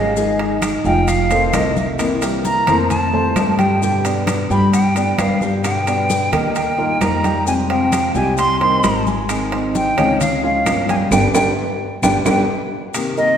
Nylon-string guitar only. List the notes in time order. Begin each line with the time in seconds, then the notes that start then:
Already playing: D#3 G3 C#4 G4
0.16 D#3 G#3 D#4 G#4
0.84 G#3 D#4 G#4
1.08 muted nylon-string guitar stroke
1.30 D#3 A3 C4 F4
1.53 D#3 A3 C4 F4
1.98 C3 E3 A#3 C4 E4
2.67 E3 A#3 C4 E4
2.91 muted nylon-string guitar stroke
3.13 G3 C4 F4
3.36 F3 G3 C4 F4
3.82 B2 D3 G3 B3 G4
4.50 D3 G3 B3 G4
4.73 muted nylon-string guitar stroke
4.95 D3 G3 B3 G4
5.18 D3 G3 B3 G4
5.64 B2 D3 G3 B3 G4
6.32 D3 G3 B3 G4
6.56 muted nylon-string guitar stroke
6.78 G3 D#4 F4
7.01 D#3 G3 D#4 F4
7.46 C3 F3 G#3 C4 G4
8.15 F3 G#3 C4 G4
8.37 muted nylon-string guitar stroke
8.60 D#3 G3 C4 G4
8.83 D#3 G3 C4 G4
9.28 D#3 G#3 C4 D#4 G#4
9.97 G#3 C4 D#4 G#4
10.20 muted nylon-string guitar stroke
10.43 F3 G#3 C#4 F4
10.66 F3 G#3 C#4 F4
11.12 D3 G3 B3
11.35 D3 G3 B3
12.03 D3 G3 B3
12.26 D3 G3 B3
12.94 C3 D#3 A#3 C4 G4